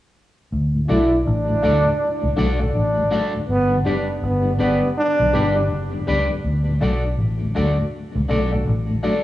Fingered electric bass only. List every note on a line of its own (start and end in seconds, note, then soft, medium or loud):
0.52 0.85 D2 medium
0.90 1.22 B1 medium
1.27 1.59 A1 medium
1.64 1.84 D2 medium
2.24 2.36 C#2 loud
2.37 2.70 B1 medium
2.75 3.08 A1 medium
3.49 3.82 G1 medium
3.86 4.19 F#1 medium
4.23 4.56 G1 loud
4.60 4.80 G1 medium
5.20 5.32 B1 medium
5.34 5.67 G1 medium
5.71 6.04 F#1 medium
6.08 6.28 C#2 medium
6.44 6.77 D2 loud
6.81 7.14 B1 medium
7.18 7.51 A1 medium
7.55 7.76 D2 medium
8.15 8.28 C#2 loud
8.30 8.63 B1 loud
8.67 9.00 A1 medium